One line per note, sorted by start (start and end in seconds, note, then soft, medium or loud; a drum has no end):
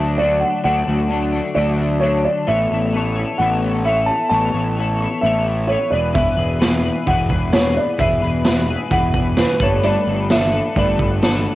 0.00 0.42 D2 medium
0.00 0.17 D3 medium
0.00 0.18 F#3 soft
0.00 0.20 A3 medium
0.00 0.20 D4 medium
0.00 0.20 E5 medium
0.18 0.62 D3 medium
0.18 0.64 F#3 medium
0.18 0.66 A3 medium
0.18 0.66 D4 medium
0.18 0.42 D5 medium
0.40 0.63 F#5 medium
0.64 0.82 D2 medium
0.64 1.08 D3 medium
0.64 0.89 F#3 medium
0.64 0.88 A3 medium
0.64 0.86 D4 medium
0.64 1.59 F#5 medium
0.87 1.40 D2 medium
0.87 1.10 F#3 soft
0.87 1.12 A3 medium
0.87 1.12 D4 medium
1.10 1.54 D3 medium
1.10 1.35 F#3 medium
1.10 1.34 A3 medium
1.10 1.31 D4 medium
1.33 1.55 F#3 soft
1.33 1.57 A3 medium
1.33 1.57 D4 medium
1.55 2.26 D2 medium
1.55 2.00 D3 medium
1.55 1.80 F#3 medium
1.55 1.79 A3 medium
1.55 1.77 D4 medium
1.55 2.03 D5 medium
1.78 2.01 F#3 soft
1.78 2.03 A3 medium
1.78 2.03 D4 medium
2.00 2.46 D3 medium
2.00 2.47 F#3 medium
2.00 2.47 A3 medium
2.00 2.25 C#5 medium
2.04 2.48 D4 medium
2.25 2.49 D5 medium
2.47 2.66 A1 medium
2.47 2.97 A3 medium
2.47 2.93 B3 medium
2.47 2.73 E4 medium
2.47 2.72 A4 medium
2.47 2.70 C#5 medium
2.47 3.42 E5 medium
2.70 3.23 A1 medium
2.70 2.95 E4 soft
2.70 2.96 A4 medium
2.70 2.97 C#5 medium
2.94 3.40 B3 medium
2.94 3.19 E4 medium
2.94 3.16 A4 medium
2.94 3.14 C#5 medium
3.15 3.41 E4 soft
3.15 3.41 A4 medium
3.15 3.42 C#5 medium
3.38 4.09 A1 medium
3.38 3.85 A3 medium
3.38 3.84 B3 medium
3.38 3.66 E4 medium
3.38 3.86 F#5 medium
3.42 3.63 A4 medium
3.42 3.61 C#5 medium
3.62 3.86 E4 soft
3.62 3.86 A4 medium
3.62 3.87 C#5 medium
3.85 4.31 B3 medium
3.85 4.32 E4 medium
3.85 4.32 A4 medium
3.85 4.33 C#5 medium
3.85 4.07 E5 medium
4.06 4.28 A5 medium
4.29 4.49 A1 medium
4.29 4.77 A3 medium
4.29 4.77 B3 medium
4.29 4.57 E4 medium
4.29 5.25 A5 medium
4.33 4.55 A4 medium
4.33 4.53 C#5 medium
4.54 5.06 A1 medium
4.54 4.78 E4 soft
4.54 4.78 A4 medium
4.54 4.79 C#5 medium
4.77 5.24 B3 medium
4.77 5.03 E4 medium
4.77 5.01 A4 medium
4.77 4.99 C#5 medium
5.00 5.24 E4 soft
5.00 5.25 A4 medium
5.00 5.25 C#5 medium
5.21 5.75 A1 medium
5.21 5.69 A3 medium
5.21 5.69 B3 medium
5.21 5.49 E4 medium
5.21 5.65 E5 medium
5.26 5.47 A4 medium
5.26 5.45 C#5 medium
5.46 5.70 E4 soft
5.46 5.70 A4 soft
5.46 5.71 C#5 medium
5.67 5.94 B3 medium
5.67 5.93 E4 medium
5.67 5.90 C#5 medium
5.71 5.92 A4 medium
5.71 5.91 C#5 medium
5.90 6.27 E1 medium
5.90 6.15 B3 medium
5.90 6.16 E4 medium
5.90 6.17 G#4 medium
5.90 6.18 B4 medium
5.90 6.15 D5 medium
5.95 6.14 E3 medium
6.14 7.06 E3 medium
6.14 6.59 B3 medium
6.14 6.40 E4 medium
6.14 6.38 G#4 medium
6.14 7.09 E5 medium
6.14 kick medium
6.14 open hi-hat soft
6.18 6.36 B4 medium
6.37 6.90 E1 medium
6.37 6.61 E4 soft
6.37 6.62 G#4 medium
6.37 6.62 B4 medium
6.60 7.07 B3 medium
6.60 6.86 E4 medium
6.60 6.84 G#4 medium
6.60 6.83 B4 medium
6.60 snare medium
6.60 open hi-hat soft
6.83 7.07 E4 soft
6.83 7.09 G#4 medium
6.83 7.10 B4 medium
7.07 7.77 E1 medium
7.07 7.53 E3 medium
7.07 7.52 B3 medium
7.07 7.32 E4 medium
7.07 7.30 G#4 medium
7.07 7.29 B4 medium
7.07 7.55 F#5 medium
7.07 kick medium
7.07 open hi-hat soft
7.29 7.53 G#4 medium
7.29 7.55 B4 medium
7.29 kick medium
7.33 7.52 E4 soft
7.52 7.99 B3 medium
7.52 7.99 E4 medium
7.52 8.00 G#4 medium
7.52 8.01 B4 medium
7.52 7.77 C#5 medium
7.52 snare medium
7.52 open hi-hat soft
7.77 8.00 D5 medium
7.98 8.17 E1 medium
7.98 8.45 E3 medium
7.98 8.45 B3 medium
7.98 8.24 E4 medium
7.98 8.23 G#4 medium
7.98 8.22 B4 medium
7.98 8.94 E5 medium
7.98 kick medium
7.98 open hi-hat soft
8.22 8.75 E1 medium
8.22 8.45 E4 medium
8.22 8.46 G#4 medium
8.22 8.48 B4 medium
8.45 8.91 B3 medium
8.45 8.70 E4 medium
8.45 8.69 G#4 medium
8.45 8.67 B4 medium
8.45 snare loud
8.45 open hi-hat soft
8.68 8.91 E4 medium
8.68 8.92 G#4 medium
8.68 8.93 B4 medium
8.91 9.44 E1 medium
8.91 9.37 E3 medium
8.91 9.37 B3 medium
8.91 9.16 E4 medium
8.91 9.14 G#4 medium
8.91 9.13 B4 medium
8.91 9.39 F#5 medium
8.91 kick medium
8.91 open hi-hat soft
9.14 9.37 E4 medium
9.14 9.38 G#4 medium
9.14 9.40 B4 medium
9.14 kick medium
9.37 9.63 B3 medium
9.37 9.60 E4 medium
9.37 9.60 G#4 medium
9.37 9.62 B4 medium
9.37 9.60 B4 medium
9.37 snare medium
9.37 open hi-hat soft
9.60 9.95 G1 medium
9.60 9.83 G3 medium
9.60 9.84 A3 medium
9.60 9.85 D4 medium
9.60 9.86 A4 medium
9.60 9.86 B4 medium
9.60 9.83 C#5 medium
9.60 kick medium
9.83 10.32 G3 medium
9.83 10.29 A3 medium
9.83 10.10 D4 medium
9.83 10.09 A4 medium
9.83 10.06 B4 medium
9.83 10.32 D5 medium
9.83 open hi-hat soft
10.07 10.59 G1 medium
10.07 10.30 D4 soft
10.07 10.31 A4 medium
10.07 10.32 B4 medium
10.29 10.76 A3 medium
10.29 10.55 D4 medium
10.29 10.54 A4 medium
10.29 10.52 B4 medium
10.29 10.73 E5 medium
10.29 snare medium
10.29 open hi-hat soft
10.52 10.77 D4 soft
10.52 10.78 A4 medium
10.52 10.78 B4 medium
10.76 11.46 G1 medium
10.76 11.22 G3 medium
10.76 11.21 A3 medium
10.76 11.02 D4 medium
10.76 11.00 A4 medium
10.76 10.98 B4 medium
10.76 11.55 D5 medium
10.76 kick medium
10.76 open hi-hat soft
10.99 11.22 D4 soft
10.99 11.23 A4 medium
10.99 11.24 B4 medium
10.99 kick medium
11.21 11.55 A3 medium
11.21 11.55 D4 medium
11.21 11.55 A4 medium
11.21 11.55 B4 medium
11.21 snare medium
11.21 open hi-hat soft